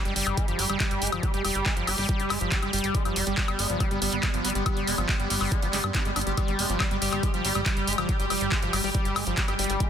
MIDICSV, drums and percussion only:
0, 0, Header, 1, 2, 480
1, 0, Start_track
1, 0, Key_signature, 1, "major"
1, 0, Tempo, 428571
1, 1380, Time_signature, 4, 2, 24, 8
1, 11087, End_track
2, 0, Start_track
2, 0, Title_t, "Drums"
2, 60, Note_on_c, 9, 42, 54
2, 172, Note_off_c, 9, 42, 0
2, 179, Note_on_c, 9, 46, 104
2, 291, Note_off_c, 9, 46, 0
2, 299, Note_on_c, 9, 42, 54
2, 299, Note_on_c, 9, 76, 37
2, 411, Note_off_c, 9, 42, 0
2, 411, Note_off_c, 9, 76, 0
2, 419, Note_on_c, 9, 42, 81
2, 420, Note_on_c, 9, 36, 114
2, 531, Note_off_c, 9, 42, 0
2, 532, Note_off_c, 9, 36, 0
2, 539, Note_on_c, 9, 42, 55
2, 651, Note_off_c, 9, 42, 0
2, 659, Note_on_c, 9, 46, 105
2, 771, Note_off_c, 9, 46, 0
2, 779, Note_on_c, 9, 42, 57
2, 779, Note_on_c, 9, 76, 38
2, 891, Note_off_c, 9, 42, 0
2, 891, Note_off_c, 9, 76, 0
2, 899, Note_on_c, 9, 39, 124
2, 899, Note_on_c, 9, 42, 80
2, 900, Note_on_c, 9, 36, 118
2, 1011, Note_off_c, 9, 39, 0
2, 1011, Note_off_c, 9, 42, 0
2, 1012, Note_off_c, 9, 36, 0
2, 1019, Note_on_c, 9, 42, 55
2, 1131, Note_off_c, 9, 42, 0
2, 1139, Note_on_c, 9, 46, 102
2, 1199, Note_on_c, 9, 42, 67
2, 1251, Note_off_c, 9, 46, 0
2, 1260, Note_off_c, 9, 42, 0
2, 1260, Note_on_c, 9, 42, 55
2, 1260, Note_on_c, 9, 76, 77
2, 1372, Note_off_c, 9, 42, 0
2, 1372, Note_off_c, 9, 76, 0
2, 1380, Note_on_c, 9, 36, 125
2, 1380, Note_on_c, 9, 42, 79
2, 1492, Note_off_c, 9, 36, 0
2, 1492, Note_off_c, 9, 42, 0
2, 1499, Note_on_c, 9, 42, 52
2, 1611, Note_off_c, 9, 42, 0
2, 1619, Note_on_c, 9, 46, 107
2, 1619, Note_on_c, 9, 76, 38
2, 1731, Note_off_c, 9, 46, 0
2, 1731, Note_off_c, 9, 76, 0
2, 1739, Note_on_c, 9, 42, 53
2, 1851, Note_off_c, 9, 42, 0
2, 1859, Note_on_c, 9, 39, 126
2, 1860, Note_on_c, 9, 36, 124
2, 1971, Note_off_c, 9, 39, 0
2, 1972, Note_off_c, 9, 36, 0
2, 1979, Note_on_c, 9, 42, 52
2, 2091, Note_off_c, 9, 42, 0
2, 2099, Note_on_c, 9, 46, 110
2, 2099, Note_on_c, 9, 76, 38
2, 2211, Note_off_c, 9, 46, 0
2, 2211, Note_off_c, 9, 76, 0
2, 2219, Note_on_c, 9, 46, 64
2, 2331, Note_off_c, 9, 46, 0
2, 2339, Note_on_c, 9, 42, 82
2, 2340, Note_on_c, 9, 36, 121
2, 2451, Note_off_c, 9, 42, 0
2, 2452, Note_off_c, 9, 36, 0
2, 2460, Note_on_c, 9, 42, 54
2, 2572, Note_off_c, 9, 42, 0
2, 2580, Note_on_c, 9, 39, 38
2, 2580, Note_on_c, 9, 46, 108
2, 2580, Note_on_c, 9, 76, 76
2, 2692, Note_off_c, 9, 39, 0
2, 2692, Note_off_c, 9, 46, 0
2, 2692, Note_off_c, 9, 76, 0
2, 2700, Note_on_c, 9, 42, 54
2, 2812, Note_off_c, 9, 42, 0
2, 2820, Note_on_c, 9, 36, 126
2, 2820, Note_on_c, 9, 39, 123
2, 2820, Note_on_c, 9, 42, 78
2, 2932, Note_off_c, 9, 36, 0
2, 2932, Note_off_c, 9, 39, 0
2, 2932, Note_off_c, 9, 42, 0
2, 2940, Note_on_c, 9, 42, 54
2, 2940, Note_on_c, 9, 76, 37
2, 3052, Note_off_c, 9, 42, 0
2, 3052, Note_off_c, 9, 76, 0
2, 3060, Note_on_c, 9, 46, 111
2, 3120, Note_on_c, 9, 42, 64
2, 3172, Note_off_c, 9, 46, 0
2, 3180, Note_off_c, 9, 42, 0
2, 3180, Note_on_c, 9, 42, 54
2, 3292, Note_off_c, 9, 42, 0
2, 3300, Note_on_c, 9, 36, 125
2, 3300, Note_on_c, 9, 42, 76
2, 3412, Note_off_c, 9, 36, 0
2, 3412, Note_off_c, 9, 42, 0
2, 3420, Note_on_c, 9, 42, 50
2, 3420, Note_on_c, 9, 76, 39
2, 3532, Note_off_c, 9, 42, 0
2, 3532, Note_off_c, 9, 76, 0
2, 3540, Note_on_c, 9, 46, 107
2, 3652, Note_off_c, 9, 46, 0
2, 3660, Note_on_c, 9, 42, 51
2, 3772, Note_off_c, 9, 42, 0
2, 3780, Note_on_c, 9, 36, 127
2, 3780, Note_on_c, 9, 39, 124
2, 3892, Note_off_c, 9, 36, 0
2, 3892, Note_off_c, 9, 39, 0
2, 3900, Note_on_c, 9, 42, 51
2, 3900, Note_on_c, 9, 76, 76
2, 4012, Note_off_c, 9, 42, 0
2, 4012, Note_off_c, 9, 76, 0
2, 4020, Note_on_c, 9, 46, 110
2, 4132, Note_off_c, 9, 46, 0
2, 4140, Note_on_c, 9, 42, 50
2, 4252, Note_off_c, 9, 42, 0
2, 4260, Note_on_c, 9, 36, 120
2, 4260, Note_on_c, 9, 42, 77
2, 4260, Note_on_c, 9, 76, 39
2, 4372, Note_off_c, 9, 36, 0
2, 4372, Note_off_c, 9, 42, 0
2, 4372, Note_off_c, 9, 76, 0
2, 4380, Note_on_c, 9, 42, 52
2, 4492, Note_off_c, 9, 42, 0
2, 4500, Note_on_c, 9, 46, 111
2, 4612, Note_off_c, 9, 46, 0
2, 4620, Note_on_c, 9, 42, 51
2, 4732, Note_off_c, 9, 42, 0
2, 4740, Note_on_c, 9, 36, 121
2, 4740, Note_on_c, 9, 39, 119
2, 4740, Note_on_c, 9, 42, 76
2, 4740, Note_on_c, 9, 76, 39
2, 4852, Note_off_c, 9, 36, 0
2, 4852, Note_off_c, 9, 39, 0
2, 4852, Note_off_c, 9, 42, 0
2, 4852, Note_off_c, 9, 76, 0
2, 4860, Note_on_c, 9, 42, 53
2, 4972, Note_off_c, 9, 42, 0
2, 4980, Note_on_c, 9, 46, 108
2, 5040, Note_on_c, 9, 42, 62
2, 5092, Note_off_c, 9, 46, 0
2, 5099, Note_off_c, 9, 42, 0
2, 5099, Note_on_c, 9, 42, 51
2, 5211, Note_off_c, 9, 42, 0
2, 5220, Note_on_c, 9, 36, 127
2, 5220, Note_on_c, 9, 42, 76
2, 5220, Note_on_c, 9, 76, 79
2, 5332, Note_off_c, 9, 36, 0
2, 5332, Note_off_c, 9, 42, 0
2, 5332, Note_off_c, 9, 76, 0
2, 5339, Note_on_c, 9, 42, 48
2, 5451, Note_off_c, 9, 42, 0
2, 5459, Note_on_c, 9, 46, 106
2, 5571, Note_off_c, 9, 46, 0
2, 5580, Note_on_c, 9, 42, 49
2, 5580, Note_on_c, 9, 76, 40
2, 5692, Note_off_c, 9, 42, 0
2, 5692, Note_off_c, 9, 76, 0
2, 5700, Note_on_c, 9, 36, 124
2, 5700, Note_on_c, 9, 39, 116
2, 5812, Note_off_c, 9, 36, 0
2, 5812, Note_off_c, 9, 39, 0
2, 5820, Note_on_c, 9, 42, 49
2, 5932, Note_off_c, 9, 42, 0
2, 5939, Note_on_c, 9, 46, 109
2, 6051, Note_off_c, 9, 46, 0
2, 6060, Note_on_c, 9, 46, 63
2, 6060, Note_on_c, 9, 76, 39
2, 6172, Note_off_c, 9, 46, 0
2, 6172, Note_off_c, 9, 76, 0
2, 6179, Note_on_c, 9, 42, 75
2, 6180, Note_on_c, 9, 36, 120
2, 6291, Note_off_c, 9, 42, 0
2, 6292, Note_off_c, 9, 36, 0
2, 6300, Note_on_c, 9, 42, 50
2, 6412, Note_off_c, 9, 42, 0
2, 6420, Note_on_c, 9, 39, 36
2, 6420, Note_on_c, 9, 46, 107
2, 6532, Note_off_c, 9, 39, 0
2, 6532, Note_off_c, 9, 46, 0
2, 6540, Note_on_c, 9, 76, 82
2, 6652, Note_off_c, 9, 76, 0
2, 6660, Note_on_c, 9, 36, 125
2, 6660, Note_on_c, 9, 39, 119
2, 6660, Note_on_c, 9, 42, 74
2, 6772, Note_off_c, 9, 36, 0
2, 6772, Note_off_c, 9, 39, 0
2, 6772, Note_off_c, 9, 42, 0
2, 6780, Note_on_c, 9, 42, 50
2, 6892, Note_off_c, 9, 42, 0
2, 6900, Note_on_c, 9, 46, 106
2, 6900, Note_on_c, 9, 76, 39
2, 6960, Note_on_c, 9, 42, 58
2, 7012, Note_off_c, 9, 46, 0
2, 7012, Note_off_c, 9, 76, 0
2, 7020, Note_off_c, 9, 42, 0
2, 7020, Note_on_c, 9, 42, 52
2, 7132, Note_off_c, 9, 42, 0
2, 7140, Note_on_c, 9, 36, 120
2, 7140, Note_on_c, 9, 42, 75
2, 7140, Note_on_c, 9, 76, 41
2, 7252, Note_off_c, 9, 36, 0
2, 7252, Note_off_c, 9, 42, 0
2, 7252, Note_off_c, 9, 76, 0
2, 7260, Note_on_c, 9, 42, 50
2, 7372, Note_off_c, 9, 42, 0
2, 7380, Note_on_c, 9, 46, 103
2, 7492, Note_off_c, 9, 46, 0
2, 7500, Note_on_c, 9, 42, 50
2, 7612, Note_off_c, 9, 42, 0
2, 7620, Note_on_c, 9, 36, 119
2, 7620, Note_on_c, 9, 39, 115
2, 7620, Note_on_c, 9, 76, 84
2, 7732, Note_off_c, 9, 36, 0
2, 7732, Note_off_c, 9, 39, 0
2, 7732, Note_off_c, 9, 76, 0
2, 7740, Note_on_c, 9, 42, 48
2, 7852, Note_off_c, 9, 42, 0
2, 7860, Note_on_c, 9, 46, 106
2, 7972, Note_off_c, 9, 46, 0
2, 7980, Note_on_c, 9, 42, 52
2, 7980, Note_on_c, 9, 76, 42
2, 8092, Note_off_c, 9, 42, 0
2, 8092, Note_off_c, 9, 76, 0
2, 8100, Note_on_c, 9, 36, 118
2, 8100, Note_on_c, 9, 42, 76
2, 8212, Note_off_c, 9, 36, 0
2, 8212, Note_off_c, 9, 42, 0
2, 8220, Note_on_c, 9, 42, 52
2, 8332, Note_off_c, 9, 42, 0
2, 8340, Note_on_c, 9, 46, 103
2, 8452, Note_off_c, 9, 46, 0
2, 8460, Note_on_c, 9, 42, 52
2, 8460, Note_on_c, 9, 76, 41
2, 8572, Note_off_c, 9, 42, 0
2, 8572, Note_off_c, 9, 76, 0
2, 8580, Note_on_c, 9, 36, 116
2, 8580, Note_on_c, 9, 39, 115
2, 8580, Note_on_c, 9, 42, 77
2, 8692, Note_off_c, 9, 36, 0
2, 8692, Note_off_c, 9, 39, 0
2, 8692, Note_off_c, 9, 42, 0
2, 8700, Note_on_c, 9, 42, 52
2, 8812, Note_off_c, 9, 42, 0
2, 8819, Note_on_c, 9, 46, 103
2, 8880, Note_on_c, 9, 42, 63
2, 8931, Note_off_c, 9, 46, 0
2, 8939, Note_off_c, 9, 42, 0
2, 8939, Note_on_c, 9, 42, 51
2, 8939, Note_on_c, 9, 76, 81
2, 9051, Note_off_c, 9, 42, 0
2, 9051, Note_off_c, 9, 76, 0
2, 9059, Note_on_c, 9, 42, 78
2, 9060, Note_on_c, 9, 36, 120
2, 9171, Note_off_c, 9, 42, 0
2, 9172, Note_off_c, 9, 36, 0
2, 9179, Note_on_c, 9, 42, 51
2, 9291, Note_off_c, 9, 42, 0
2, 9300, Note_on_c, 9, 46, 101
2, 9300, Note_on_c, 9, 76, 41
2, 9412, Note_off_c, 9, 46, 0
2, 9412, Note_off_c, 9, 76, 0
2, 9420, Note_on_c, 9, 42, 52
2, 9532, Note_off_c, 9, 42, 0
2, 9540, Note_on_c, 9, 36, 114
2, 9540, Note_on_c, 9, 39, 114
2, 9652, Note_off_c, 9, 36, 0
2, 9652, Note_off_c, 9, 39, 0
2, 9660, Note_on_c, 9, 42, 50
2, 9772, Note_off_c, 9, 42, 0
2, 9780, Note_on_c, 9, 46, 104
2, 9780, Note_on_c, 9, 76, 42
2, 9892, Note_off_c, 9, 46, 0
2, 9892, Note_off_c, 9, 76, 0
2, 9900, Note_on_c, 9, 46, 59
2, 10012, Note_off_c, 9, 46, 0
2, 10020, Note_on_c, 9, 36, 115
2, 10020, Note_on_c, 9, 42, 80
2, 10132, Note_off_c, 9, 36, 0
2, 10132, Note_off_c, 9, 42, 0
2, 10140, Note_on_c, 9, 42, 53
2, 10252, Note_off_c, 9, 42, 0
2, 10260, Note_on_c, 9, 39, 36
2, 10260, Note_on_c, 9, 46, 102
2, 10260, Note_on_c, 9, 76, 82
2, 10372, Note_off_c, 9, 39, 0
2, 10372, Note_off_c, 9, 46, 0
2, 10372, Note_off_c, 9, 76, 0
2, 10380, Note_on_c, 9, 42, 52
2, 10492, Note_off_c, 9, 42, 0
2, 10500, Note_on_c, 9, 36, 119
2, 10500, Note_on_c, 9, 39, 114
2, 10500, Note_on_c, 9, 42, 77
2, 10612, Note_off_c, 9, 36, 0
2, 10612, Note_off_c, 9, 39, 0
2, 10612, Note_off_c, 9, 42, 0
2, 10620, Note_on_c, 9, 42, 53
2, 10620, Note_on_c, 9, 76, 41
2, 10732, Note_off_c, 9, 42, 0
2, 10732, Note_off_c, 9, 76, 0
2, 10740, Note_on_c, 9, 46, 99
2, 10800, Note_on_c, 9, 42, 64
2, 10852, Note_off_c, 9, 46, 0
2, 10860, Note_off_c, 9, 42, 0
2, 10860, Note_on_c, 9, 42, 53
2, 10972, Note_off_c, 9, 42, 0
2, 10980, Note_on_c, 9, 36, 114
2, 10980, Note_on_c, 9, 42, 80
2, 11087, Note_off_c, 9, 36, 0
2, 11087, Note_off_c, 9, 42, 0
2, 11087, End_track
0, 0, End_of_file